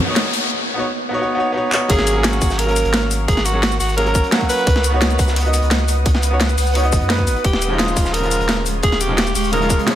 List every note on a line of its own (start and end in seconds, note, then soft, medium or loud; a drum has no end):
0.00 0.49 B3 medium
0.00 0.49 D#4 medium
0.00 0.49 C#5 medium
0.00 0.47 F#5 medium
0.00 riser medium
0.05 0.48 B3 medium
0.05 0.49 D#4 medium
0.05 0.50 F#4 medium
0.10 0.51 C#5 medium
0.16 snare loud
0.16 closed hi-hat medium
0.33 open hi-hat medium
0.74 0.83 B3 medium
0.74 0.84 D#4 medium
0.74 0.85 F#4 medium
0.79 0.85 C#5 medium
1.09 1.16 B3 medium
1.09 1.18 D#4 medium
1.09 1.19 F#4 medium
1.14 1.33 B3 medium
1.14 1.20 C#5 medium
1.19 1.35 D#4 medium
1.19 1.37 F#4 medium
1.19 1.37 C#5 loud
1.35 1.51 B3 medium
1.35 1.52 D#4 medium
1.35 1.54 F#4 medium
1.40 1.55 C#5 loud
1.52 1.68 B3 medium
1.52 1.70 D#4 medium
1.52 1.71 F#4 medium
1.57 1.72 C#5 loud
1.70 1.87 B3 medium
1.70 1.88 D#4 medium
1.70 1.89 F#4 medium
1.70 clap loud
1.75 1.89 C#5 loud
1.88 1.98 G#1 loud
1.88 2.12 F#3 loud
1.88 2.12 A#3 medium
1.88 2.12 C#4 medium
1.88 2.26 G#4 loud
1.88 2.13 G#4 loud
1.88 4.64 A#4 medium
1.88 4.64 F#5 medium
1.88 4.64 C#6 medium
1.88 kick loud
1.88 closed hi-hat medium
1.88 closed hi-hat loud
1.98 2.40 G#1 medium
1.98 snare medium
2.07 closed hi-hat medium
2.07 shaker medium
2.13 2.64 F#3 medium
2.13 2.65 A#3 medium
2.13 2.66 C#4 medium
2.18 2.67 G#4 loud
2.24 2.60 F#4 medium
2.24 snare loud
2.24 closed hi-hat loud
2.24 closed hi-hat medium
2.33 closed hi-hat soft
2.33 shaker soft
2.42 2.84 G#1 medium
2.42 kick loud
2.42 closed hi-hat medium
2.42 open hi-hat medium
2.42 shaker medium
2.50 snare medium
2.50 shaker soft
2.59 3.11 A#4 loud
2.59 closed hi-hat loud
2.59 closed hi-hat medium
2.65 3.51 F#3 medium
2.65 3.52 A#3 medium
2.65 3.53 C#4 medium
2.65 closed hi-hat soft
2.70 3.54 A#4 medium
2.76 closed hi-hat medium
2.76 shaker medium
2.85 3.27 G#1 medium
2.85 closed hi-hat soft
2.93 snare loud
2.93 closed hi-hat medium
2.93 closed hi-hat loud
3.11 closed hi-hat medium
3.11 open hi-hat medium
3.11 shaker medium
3.28 3.36 G#1 loud
3.28 3.47 G#4 loud
3.28 kick loud
3.28 closed hi-hat loud
3.37 3.79 G#1 medium
3.37 snare soft
3.37 snare medium
3.45 3.79 F#4 loud
3.45 closed hi-hat medium
3.45 shaker medium
3.53 3.58 F#3 medium
3.53 3.59 A#3 medium
3.53 3.59 C#4 medium
3.53 3.59 G#4 medium
3.63 snare loud
3.63 closed hi-hat medium
3.72 closed hi-hat soft
3.72 shaker soft
3.80 4.22 G#1 medium
3.80 3.96 F#4 medium
3.80 open hi-hat medium
3.80 shaker medium
3.89 shaker soft
3.96 4.04 F#3 medium
3.96 4.04 A#3 medium
3.96 4.05 C#4 medium
3.96 4.05 G#4 medium
3.96 4.30 A#4 loud
3.96 closed hi-hat loud
3.96 closed hi-hat medium
4.05 4.30 F#3 medium
4.05 4.30 A#3 medium
4.05 4.31 C#4 medium
4.05 4.31 A#4 loud
4.05 closed hi-hat soft
4.15 kick loud
4.15 closed hi-hat medium
4.15 shaker medium
4.24 closed hi-hat soft
4.31 4.65 F#3 medium
4.31 4.66 A#3 medium
4.31 4.66 C#4 medium
4.31 4.67 F#4 loud
4.31 snare loud
4.31 closed hi-hat medium
4.41 kick medium
4.41 closed hi-hat soft
4.49 4.98 B4 loud
4.49 closed hi-hat medium
4.49 open hi-hat medium
4.49 shaker medium
4.58 closed hi-hat soft
4.67 4.75 C#2 loud
4.67 7.42 B4 medium
4.67 7.42 F#5 medium
4.67 7.42 D#6 medium
4.67 kick loud
4.67 closed hi-hat medium
4.75 5.18 C#2 medium
4.75 snare medium
4.83 closed hi-hat medium
4.83 shaker medium
4.90 5.41 B3 medium
4.90 5.43 D#4 medium
4.90 5.43 F#4 medium
4.96 5.44 C#5 medium
5.01 snare loud
5.01 closed hi-hat medium
5.10 closed hi-hat soft
5.10 shaker soft
5.19 5.61 C#2 medium
5.19 kick loud
5.19 closed hi-hat medium
5.19 open hi-hat medium
5.19 shaker medium
5.28 snare medium
5.28 shaker soft
5.36 closed hi-hat medium
5.43 6.29 B3 medium
5.43 6.29 D#4 medium
5.43 6.30 F#4 medium
5.43 closed hi-hat soft
5.48 6.31 D#5 medium
5.53 closed hi-hat medium
5.53 shaker medium
5.62 6.04 C#2 medium
5.62 closed hi-hat soft
5.71 snare loud
5.71 closed hi-hat medium
5.88 closed hi-hat medium
5.88 open hi-hat medium
5.88 shaker medium
6.06 6.14 C#2 medium
6.06 kick loud
6.06 closed hi-hat medium
6.14 6.56 C#2 medium
6.14 snare medium
6.14 snare soft
6.22 closed hi-hat medium
6.22 shaker medium
6.31 6.36 B3 medium
6.31 6.36 D#4 medium
6.31 6.37 F#4 medium
6.31 6.37 C#5 medium
6.40 snare loud
6.40 closed hi-hat medium
6.49 closed hi-hat soft
6.49 shaker soft
6.58 6.92 C#2 medium
6.58 open hi-hat medium
6.58 shaker medium
6.67 shaker soft
6.74 6.81 B3 medium
6.74 6.82 D#4 medium
6.74 6.82 F#4 medium
6.74 6.83 C#5 medium
6.74 closed hi-hat medium
6.74 closed hi-hat loud
6.83 7.07 B3 medium
6.83 7.08 D#4 medium
6.83 7.08 F#4 medium
6.83 7.09 D#5 medium
6.83 closed hi-hat soft
6.92 7.00 G#1 loud
6.92 kick loud
6.92 closed hi-hat medium
6.92 shaker medium
7.01 7.29 F#2 medium
7.01 closed hi-hat soft
7.08 7.43 B3 medium
7.08 7.43 D#4 medium
7.08 7.44 F#4 medium
7.08 7.44 B4 loud
7.08 snare loud
7.08 closed hi-hat medium
7.18 kick medium
7.18 closed hi-hat soft
7.27 7.35 G#1 loud
7.27 closed hi-hat medium
7.27 open hi-hat medium
7.27 shaker medium
7.36 closed hi-hat soft
7.44 7.52 D#1 loud
7.44 9.95 G#3 medium
7.44 7.81 G4 medium
7.44 9.95 F5 medium
7.44 9.95 C#6 medium
7.44 kick loud
7.44 closed hi-hat medium
7.53 7.95 D#1 medium
7.53 snare medium
7.53 snare soft
7.61 closed hi-hat medium
7.61 shaker medium
7.68 8.19 C#3 medium
7.68 8.20 F3 medium
7.68 8.21 G#3 medium
7.73 8.22 D#4 medium
7.79 8.15 F4 medium
7.79 snare loud
7.79 closed hi-hat medium
7.88 closed hi-hat soft
7.88 shaker soft
7.96 8.39 D#1 medium
7.96 kick loud
7.96 closed hi-hat medium
7.96 open hi-hat medium
7.96 shaker medium
8.05 snare medium
8.05 shaker soft
8.14 8.66 A#4 loud
8.14 closed hi-hat medium
8.20 9.06 C#3 medium
8.20 9.07 F3 medium
8.20 9.08 G#3 medium
8.20 closed hi-hat soft
8.25 9.09 F4 medium
8.31 closed hi-hat medium
8.31 shaker medium
8.40 8.82 D#1 medium
8.40 closed hi-hat soft
8.49 snare loud
8.49 closed hi-hat medium
8.66 closed hi-hat medium
8.66 open hi-hat medium
8.66 shaker medium
8.83 8.91 D#1 loud
8.83 9.03 G#4 loud
8.83 kick loud
8.83 closed hi-hat medium
8.83 closed hi-hat loud
8.92 9.34 D#1 medium
8.92 snare medium
8.92 snare soft
9.01 9.35 G4 loud
9.01 closed hi-hat medium
9.01 shaker medium
9.08 9.13 C#3 medium
9.08 9.14 F3 medium
9.08 9.14 G#3 medium
9.08 9.15 D#4 medium
9.18 snare loud
9.18 closed hi-hat medium
9.27 closed hi-hat soft
9.27 shaker soft
9.35 9.77 D#1 medium
9.35 9.52 G4 medium
9.35 open hi-hat medium
9.35 shaker medium
9.44 shaker soft
9.51 9.59 C#3 medium
9.51 9.59 F3 medium
9.51 9.60 G#3 medium
9.51 9.60 D#4 medium
9.51 9.85 A#4 loud
9.51 closed hi-hat medium
9.60 9.84 C#3 medium
9.60 9.85 F3 medium
9.60 9.86 G#3 medium
9.60 9.86 F4 medium
9.60 closed hi-hat soft
9.69 kick loud
9.69 closed hi-hat medium
9.69 shaker medium
9.79 closed hi-hat soft
9.86 9.95 C#3 loud
9.86 9.95 F3 medium
9.86 9.95 G#3 medium
9.86 9.95 C#4 loud
9.86 snare loud
9.86 closed hi-hat medium